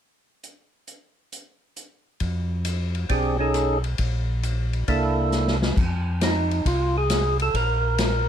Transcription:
0.43 closed hi-hat soft
0.87 closed hi-hat soft
1.32 closed hi-hat medium
1.76 closed hi-hat soft
2.20 3.06 F2 medium
2.20 kick soft
2.20 ride soft
2.65 hi-hat pedal medium
2.65 ride medium
2.95 ride soft
3.09 3.95 B1 medium
3.09 3.36 C4 soft
3.09 3.37 D4 soft
3.09 3.37 G4 soft
3.09 3.37 G#4 soft
3.09 kick soft
3.09 ride soft
3.39 3.78 C#4 soft
3.39 3.78 D#4 soft
3.39 3.79 G#4 soft
3.39 3.79 A4 medium
3.54 cross-stick medium
3.54 hi-hat pedal soft
3.54 ride soft
3.84 ride soft
3.98 4.84 A#1 medium
3.98 kick soft
3.98 ride medium
4.43 hi-hat pedal soft
4.43 ride soft
4.73 ride soft
4.88 5.73 C2 medium
4.88 5.56 A#3 soft
4.88 5.56 D4 soft
4.88 5.57 E4 soft
4.88 5.57 A4 medium
4.88 kick soft
4.88 ride soft
5.32 snare soft
5.32 hi-hat pedal medium
5.47 snare soft
5.62 snare medium
5.77 6.61 F2 medium
5.77 kick medium
5.77 crash medium
6.21 6.68 D#4 medium
6.21 snare medium
6.21 hi-hat pedal medium
6.21 ride medium
6.51 ride soft
6.65 7.50 C2 medium
6.65 6.97 F4 medium
6.65 kick soft
6.65 ride medium
6.97 7.38 G#4 medium
7.10 snare medium
7.10 hi-hat pedal medium
7.10 ride medium
7.39 7.56 A4 medium
7.39 ride soft
7.54 8.29 A#1 medium
7.54 8.29 A#4 medium
7.54 kick soft
7.54 ride medium
7.98 snare medium
7.98 hi-hat pedal medium
7.98 ride medium

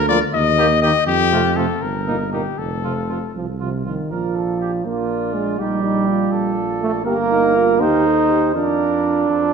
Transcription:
0.00 0.22 D2 loud
0.09 0.19 F3 medium
0.09 0.18 A#3 medium
0.09 0.18 F4 medium
0.09 0.20 D5 loud
0.33 0.95 D#2 medium
0.33 0.82 D#5 loud
0.58 0.68 D#3 medium
0.58 0.67 A#3 medium
0.58 0.67 G4 medium
0.82 0.92 D#3 medium
0.82 0.91 A#3 medium
0.82 0.92 G4 medium
0.82 1.07 D#5 loud
1.07 1.69 F2 medium
1.07 1.58 G4 loud
1.32 1.42 C3 medium
1.32 1.41 A3 medium
1.32 1.41 F4 medium
1.56 1.66 C3 medium
1.56 1.66 A3 medium
1.56 1.66 F4 medium
1.56 1.84 A4 medium
1.82 2.46 G1 medium
1.82 2.32 A#4 medium
2.07 2.17 A#2 medium
2.07 2.16 A#3 medium
2.07 2.17 D#4 medium
2.33 2.42 A#2 medium
2.33 2.43 A#3 medium
2.33 2.42 D#4 medium
2.33 2.60 G4 medium
2.59 3.22 F1 medium
2.59 3.35 A4 medium
2.84 2.94 C3 medium
2.84 2.93 F3 medium
2.84 2.93 F4 soft
3.09 3.19 C3 medium
3.09 3.19 F3 medium
3.09 3.19 F4 soft
3.35 3.98 C2 medium
3.35 3.47 F3 medium
3.60 3.85 C3 medium
3.60 3.70 F3 soft
3.60 3.69 F4 soft
3.85 4.13 D#3 medium
3.85 3.95 F3 soft
3.85 3.95 F4 soft
4.11 4.81 A#1 soft
4.11 4.87 F3 medium
4.11 4.87 F4 soft
4.11 4.37 A#4 soft
4.11 4.81 D5 soft
4.35 4.60 A4 soft
4.60 4.71 G4 soft
4.85 5.58 A#1 medium
4.85 5.36 A#3 medium
4.85 5.59 D4 soft
4.85 5.61 F4 soft
4.85 7.07 D5 soft
5.35 5.59 G#3 medium
5.59 6.31 A#1 medium
5.59 6.54 G3 medium
5.59 5.83 D#4 medium
5.59 6.34 G4 medium
5.84 6.10 D#4 medium
6.08 7.05 F4 medium
6.32 7.07 A#1 medium
6.32 7.05 A4 medium
6.81 6.92 A3 medium
7.05 7.82 G1 medium
7.05 7.82 A#3 loud
7.05 7.17 G4 medium
7.05 7.80 A#4 medium
7.05 7.82 A#4 medium
7.31 7.57 D#4 medium
7.56 7.83 F4 medium
7.80 8.56 D#2 medium
7.80 8.55 D#4 loud
7.80 8.08 G4 medium
7.80 8.57 A#4 medium
7.80 8.54 C5 medium
8.06 8.32 A4 medium
8.30 8.55 G4 medium
8.55 9.28 F2 medium
8.55 9.53 D4 medium
8.55 9.28 F4 medium
8.55 9.31 A#4 medium
8.55 9.29 D5 medium
9.29 9.53 F2 soft
9.29 9.53 F4 soft
9.29 9.53 A4 soft
9.29 9.53 C5 soft

